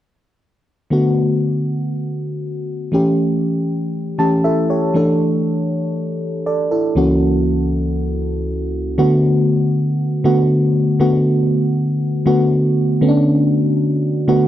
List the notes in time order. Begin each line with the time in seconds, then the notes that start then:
0.90 D3 A3 B3 F#4
2.92 E3 A3 C#4 G4
4.18 E3 A3 C#4 G4 A5
4.44 E4 A4 E5
4.70 G4 C#5
4.94 E3 A3 D4 A4
6.46 A4 D5
6.71 E4 A4
6.95 C#2 E3 A#3 C#4 F#4
8.98 D3 A3 B3 F#4
10.24 D3 A3 B3 F#4
10.99 D3 A3 B3 F#4
12.26 D3 A3 B3 F#4
13.01 D3 A3 B3 C#4
13.09 D4
14.28 D3 A3 B3 F#4